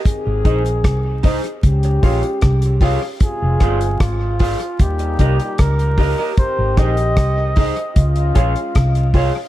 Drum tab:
HH |x-xxx-oxxxoxxxo-|x-xxx-oxxxxxxxo-|x-xxx-oxxxxxxxo-|
SD |----r-------r---|--r-r-------r---|--r-r-------r---|
BD |o-o-o-o-o-o-o-o-|o-o-o-o-o-o-o-o-|o-o-o-o-o-o-o-o-|